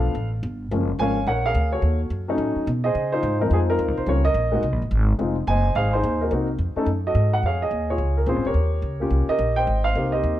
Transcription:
0.00 0.14 B1 medium
0.00 0.13 F3 medium
0.00 0.14 A3 medium
0.00 0.14 B3 medium
0.00 0.14 D4 medium
0.00 0.13 F4 medium
0.00 0.29 A4 medium
0.00 0.30 B4 medium
0.00 0.27 F5 medium
0.15 0.42 A1 medium
0.43 0.70 G1 medium
0.71 0.98 F#1 medium
0.71 0.87 F3 medium
0.71 0.87 G#3 soft
0.71 0.87 A#3 soft
0.71 0.88 C#4 medium
0.99 1.26 G#1 medium
0.99 1.15 F3 medium
0.99 1.15 G#3 medium
0.99 1.15 A#3 medium
0.99 1.16 C#4 medium
0.99 1.27 C#5 medium
0.99 1.44 F5 medium
0.99 1.28 G#5 medium
1.27 1.54 A#1 medium
1.27 1.46 A#4 medium
1.27 1.71 C#5 medium
1.27 1.45 F#5 medium
1.46 1.82 G#4 medium
1.46 1.82 A#4 medium
1.46 1.71 F5 medium
1.55 1.82 D2 medium
1.72 2.25 F#4 soft
1.72 2.25 A4 soft
1.72 1.98 C#5 medium
1.82 2.10 D#2 medium
2.10 2.37 F#2 medium
2.28 2.65 F#3 medium
2.28 2.65 A3 medium
2.28 2.65 C#4 medium
2.28 2.66 D#4 medium
2.38 2.54 A2 medium
2.56 muted upright bass stroke soft
2.67 2.94 B2 medium
2.84 3.37 G#4 medium
2.84 3.11 C5 medium
2.84 3.10 D#5 medium
2.95 3.22 C#3 medium
3.12 3.40 D#4 medium
3.12 3.53 F4 medium
3.12 3.38 C5 medium
3.23 3.50 G#2 medium
3.40 3.77 F3 medium
3.40 3.77 G#3 medium
3.40 3.52 C4 medium
3.40 3.69 D#4 medium
3.40 3.46 A#4 medium
3.51 3.78 F2 medium
3.51 4.04 C4 medium
3.51 3.70 F4 medium
3.51 3.58 G#4 medium
3.70 4.06 D#4 medium
3.70 4.06 F4 medium
3.70 3.98 A#4 medium
3.79 3.88 D#2 medium
3.88 3.97 C#2 medium
3.97 4.06 C2 medium
3.97 4.07 C5 medium
4.06 4.34 C#2 medium
4.06 4.22 G3 soft
4.06 4.22 A#3 soft
4.06 4.23 C#4 soft
4.06 4.23 F4 medium
4.06 4.24 A#4 medium
4.06 4.24 C#5 medium
4.25 4.77 A#4 medium
4.25 4.76 D#5 loud
4.34 4.62 A#1 medium
4.52 4.62 G#3 medium
4.52 4.62 A#3 medium
4.52 4.62 D#4 medium
4.52 4.63 F#4 medium
4.63 4.72 C2 medium
4.72 4.81 A#1 medium
4.82 4.90 G#1 medium
4.91 5.18 G#1 medium
5.19 5.46 F1 medium
5.19 5.34 G#3 medium
5.19 5.35 C4 soft
5.19 5.35 D#4 soft
5.19 5.35 F4 medium
5.47 5.74 F#1 medium
5.47 5.76 C5 medium
5.47 6.00 D#5 medium
5.47 5.73 G#5 loud
5.75 6.02 G#1 medium
5.75 5.94 G#4 medium
5.75 5.92 C5 medium
5.75 5.93 F5 medium
5.93 6.21 D#4 medium
5.93 6.30 G#4 medium
5.93 6.21 C5 medium
6.04 6.30 D#2 medium
6.21 6.31 D#4 soft
6.21 6.32 F#4 soft
6.21 6.47 A#4 medium
6.31 6.58 C2 medium
6.31 6.47 A#3 medium
6.31 6.47 C4 soft
6.31 6.47 D#4 medium
6.31 6.47 F#4 medium
6.59 6.75 F2 medium
6.76 6.86 A3 medium
6.76 6.86 C#4 medium
6.76 6.87 D#4 medium
6.76 6.87 A4 medium
6.76 muted upright bass stroke soft
6.86 7.14 F#2 medium
7.07 7.42 F#4 medium
7.07 7.42 A4 medium
7.07 7.34 D#5 medium
7.15 7.42 G#2 medium
7.33 7.44 F#5 medium
7.43 7.70 F2 medium
7.43 7.62 G#4 medium
7.43 7.89 C#5 medium
7.43 7.61 F5 medium
7.62 7.89 G#4 medium
7.62 7.90 D#5 medium
7.71 7.97 D#2 medium
7.90 8.27 F4 medium
7.90 8.27 G#4 medium
7.90 8.18 C#5 medium
7.98 8.26 C#2 medium
8.17 8.27 A#4 medium
8.26 8.36 A#1 medium
8.26 8.43 C4 medium
8.26 8.43 C#4 medium
8.26 8.43 F4 medium
8.26 8.44 G#4 medium
8.26 8.46 C5 medium
8.36 8.44 G#1 soft
8.45 8.53 F1 medium
8.45 9.00 G4 medium
8.45 9.26 A#4 medium
8.45 9.32 C#5 medium
8.54 8.82 D#2 medium
8.82 9.10 C#2 medium
9.00 9.37 A#3 medium
9.00 9.38 C#4 medium
9.00 9.38 F4 medium
9.00 9.29 G4 medium
9.11 9.27 C2 medium
9.28 9.66 G4 medium
9.28 9.66 A#4 medium
9.28 9.55 D#5 medium
9.28 muted upright bass stroke soft
9.39 9.66 A#1 medium
9.56 9.84 C5 medium
9.56 10.10 D#5 medium
9.56 9.86 G5 medium
9.67 9.95 G#1 medium
9.84 10.12 C5 medium
9.84 10.11 F5 medium
9.95 10.23 C2 medium
9.95 10.38 A#3 soft
9.95 10.38 C4 soft
9.95 10.38 D#4 soft
9.95 10.13 G4 medium
10.12 10.40 G4 medium
10.12 10.40 C5 medium
10.12 10.40 D#5 medium
10.23 10.40 D#2 medium

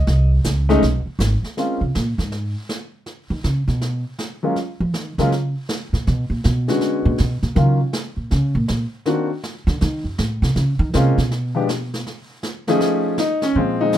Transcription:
0.00 0.28 D#5 medium
0.07 0.44 C2 loud
0.07 brush sweep soft
0.07 snare soft
0.44 0.81 C#2 medium
0.44 snare medium
0.44 hi-hat pedal medium
0.69 0.81 G#3 medium
0.69 0.81 A3 medium
0.69 0.81 C#4 medium
0.69 0.81 D#4 medium
0.69 snare soft
0.82 1.05 B1 medium
0.82 brush sweep soft
0.82 snare soft
1.06 muted upright bass stroke soft
1.19 1.42 G#1 loud
1.19 snare medium
1.19 hi-hat pedal medium
1.43 muted upright bass stroke soft
1.43 snare soft
1.57 1.79 G#3 soft
1.57 1.79 A#3 soft
1.57 1.79 C4 soft
1.57 1.79 C#4 soft
1.57 1.79 F4 medium
1.57 brush sweep soft
1.57 snare soft
1.81 1.94 C3 medium
1.95 2.18 A#2 medium
1.95 snare medium
2.18 2.53 G#2 medium
2.18 snare soft
2.32 brush sweep medium
2.32 snare soft
2.69 snare medium
3.06 brush sweep medium
3.06 snare soft
3.30 3.43 D#3 medium
3.44 3.67 C#3 medium
3.44 snare medium
3.68 4.03 B2 medium
3.68 snare soft
3.81 brush sweep soft
3.81 snare soft
4.19 snare medium
4.43 4.55 F#3 medium
4.43 4.55 G#3 soft
4.43 4.55 A#3 medium
4.43 4.55 C#4 soft
4.43 4.56 F4 medium
4.56 brush sweep soft
4.56 snare soft
4.80 4.95 F3 medium
4.94 5.18 D#3 medium
4.94 snare medium
5.18 5.53 C#3 medium
5.18 5.30 F#3 medium
5.18 5.30 G#3 medium
5.18 5.30 A#3 medium
5.18 5.31 C#4 medium
5.18 5.31 F4 medium
5.18 snare soft
5.32 brush sweep medium
5.32 snare soft
5.69 snare medium
5.93 6.06 A#2 medium
5.93 snare soft
6.07 6.29 B2 medium
6.07 brush sweep soft
6.07 snare soft
6.30 6.43 A#2 medium
6.44 6.68 B2 medium
6.44 snare medium
6.68 7.16 D3 medium
6.68 7.16 G#3 medium
6.68 7.16 B3 soft
6.68 7.16 C#4 soft
6.68 7.16 F#4 medium
6.68 snare soft
6.81 brush sweep medium
6.81 snare soft
7.05 7.18 A#2 medium
7.18 7.42 B2 medium
7.18 snare medium
7.43 7.55 A#2 medium
7.43 snare soft
7.55 7.79 C#3 loud
7.55 7.77 D#3 soft
7.55 7.78 F#3 soft
7.55 7.78 A#3 soft
7.55 7.78 C#4 soft
7.55 7.78 F4 medium
7.55 brush sweep soft
7.55 snare soft
7.93 snare medium
8.17 8.30 A#2 medium
8.31 8.54 C#3 medium
8.31 brush sweep soft
8.31 snare soft
8.55 8.68 A#2 medium
8.68 8.84 A#2 medium
8.68 snare medium
9.06 9.27 D#3 medium
9.06 9.28 A#3 medium
9.06 9.28 C4 soft
9.06 9.28 D4 medium
9.06 9.28 F#4 medium
9.06 brush sweep soft
9.06 snare soft
9.43 snare medium
9.67 9.80 D3 medium
9.67 snare soft
9.81 10.04 D#3 medium
9.81 brush sweep soft
9.81 snare soft
10.04 10.17 F#2 medium
10.18 10.42 A2 medium
10.18 snare medium
10.42 10.55 C3 medium
10.42 snare soft
10.56 10.79 C#3 medium
10.56 brush sweep soft
10.56 snare soft
10.79 10.92 D#3 loud
10.93 11.17 C3 medium
10.93 11.15 G#3 medium
10.93 11.15 A#3 medium
10.93 11.15 C4 medium
10.93 11.16 C#4 medium
10.93 11.16 F4 medium
10.93 snare medium
11.18 12.01 B2 medium
11.18 snare soft
11.31 brush sweep medium
11.31 snare medium
11.55 11.66 F3 medium
11.55 11.67 G#3 soft
11.55 11.67 B3 soft
11.55 11.67 D4 soft
11.55 11.67 G4 medium
11.69 snare medium
11.94 snare soft
12.06 brush sweep medium
12.06 snare soft
12.43 snare medium
12.67 13.16 F3 medium
12.67 13.15 A3 medium
12.67 13.16 C#4 medium
12.67 13.16 D#4 medium
12.67 13.16 G#4 medium
12.67 snare soft
12.80 brush sweep medium
12.80 snare soft
13.18 13.43 D#4 medium
13.18 snare medium
13.42 13.56 C#4 medium
13.42 snare soft
13.55 13.98 A#2 medium
13.55 13.93 F3 medium
13.55 13.81 G#3 medium
13.55 13.80 C4 medium
13.55 brush sweep soft
13.81 13.93 G#3 medium
13.81 13.94 C4 medium
13.81 13.98 D#4 medium
13.92 13.98 C#3 medium
13.92 13.98 F3 medium
13.92 13.98 G#3 medium
13.92 snare medium
13.92 hi-hat pedal soft

